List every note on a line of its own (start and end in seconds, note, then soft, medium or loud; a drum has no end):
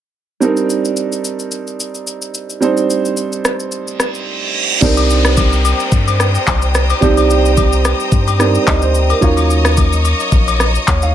0.40 2.57 G3 medium
0.40 2.58 C4 medium
0.40 2.58 D4 medium
0.40 2.58 D#4 medium
0.40 2.59 A#4 medium
0.40 shaker medium
0.57 shaker medium
0.70 shaker medium
0.85 shaker medium
0.97 shaker medium
1.12 shaker medium
1.24 shaker medium
1.39 shaker soft
1.51 shaker medium
1.67 shaker soft
1.80 shaker medium
1.95 shaker soft
2.07 shaker medium
2.22 shaker medium
2.34 shaker medium
2.50 shaker medium
2.60 4.77 G3 medium
2.60 4.78 C4 medium
2.60 4.78 D4 medium
2.60 4.79 D#4 medium
2.60 4.79 C5 medium
2.60 shaker medium
2.77 shaker medium
2.90 shaker medium
3.05 shaker medium
3.17 shaker medium
3.32 shaker medium
3.45 cross-stick medium
3.45 shaker medium
3.60 shaker soft
3.72 reverse cymbal medium
3.72 shaker medium
3.88 shaker soft
4.00 cross-stick medium
4.00 shaker medium
4.15 shaker soft
4.81 5.73 C2 loud
4.81 6.98 G3 medium
4.81 6.98 C4 medium
4.81 6.98 D4 medium
4.81 6.99 D#4 medium
4.81 6.99 A#4 medium
4.81 9.19 C5 medium
4.81 9.18 G5 medium
4.81 11.15 A#5 medium
4.81 11.15 D#6 medium
4.81 kick loud
4.81 crash medium
4.81 downlifter medium
4.81 shaker medium
4.97 high agogo medium
4.97 shaker medium
5.10 shaker medium
5.25 cross-stick medium
5.25 shaker medium
5.37 kick medium
5.37 high agogo medium
5.37 shaker medium
5.53 shaker medium
5.65 high agogo medium
5.65 shaker loud
5.80 shaker soft
5.92 6.38 G2 loud
5.92 kick loud
5.92 shaker medium
6.08 high agogo medium
6.08 shaker soft
6.20 cross-stick medium
6.20 shaker medium
6.35 shaker soft
6.47 6.93 C2 loud
6.47 kick medium
6.47 clap medium
6.47 high agogo medium
6.47 low woodblock medium
6.47 shaker medium
6.62 shaker medium
6.74 cross-stick medium
6.74 shaker medium
6.90 high agogo medium
6.90 shaker medium
7.01 7.93 C2 loud
7.01 8.36 G3 medium
7.01 8.37 C4 medium
7.01 8.37 D4 medium
7.01 8.38 D#4 medium
7.01 8.38 G4 medium
7.01 kick loud
7.01 shaker medium
7.17 high agogo medium
7.17 shaker medium
7.30 shaker medium
7.45 shaker medium
7.57 kick medium
7.57 high agogo medium
7.57 shaker medium
7.73 shaker medium
7.85 cross-stick medium
7.85 high agogo medium
7.85 shaker loud
8.00 shaker soft
8.12 8.58 G2 medium
8.12 kick loud
8.12 shaker medium
8.28 high agogo medium
8.28 shaker soft
8.39 9.22 G3 medium
8.39 9.22 C4 medium
8.39 9.22 D4 medium
8.39 9.21 D#4 soft
8.39 8.68 A#4 medium
8.39 cross-stick medium
8.39 shaker medium
8.55 shaker medium
8.67 9.13 D2 loud
8.67 8.82 D#5 medium
8.67 kick medium
8.67 clap medium
8.67 high agogo medium
8.67 low woodblock medium
8.67 shaker medium
8.82 9.09 C5 medium
8.82 shaker medium
8.95 shaker medium
9.10 9.23 A#4 medium
9.10 high agogo medium
9.10 shaker medium
9.21 10.14 D#2 loud
9.21 10.84 F#3 medium
9.21 10.84 C#4 medium
9.21 10.84 D#4 medium
9.21 10.85 F4 medium
9.21 10.85 A#4 medium
9.21 11.15 C#5 medium
9.21 11.15 D#5 medium
9.21 kick loud
9.21 shaker medium
9.37 high agogo medium
9.37 shaker medium
9.50 shaker medium
9.65 cross-stick medium
9.65 shaker medium
9.77 kick medium
9.77 high agogo medium
9.77 shaker medium
9.93 shaker medium
10.05 high agogo medium
10.05 shaker loud
10.20 shaker medium
10.32 10.78 A#1 medium
10.32 kick loud
10.32 shaker medium
10.48 high agogo medium
10.48 shaker soft
10.60 cross-stick medium
10.60 shaker medium
10.75 shaker medium
10.87 11.15 D#2 loud
10.87 11.02 C#5 medium
10.87 kick loud
10.87 clap medium
10.87 high agogo medium
10.87 low woodblock medium
10.87 shaker medium
11.02 11.15 F5 medium
11.02 shaker medium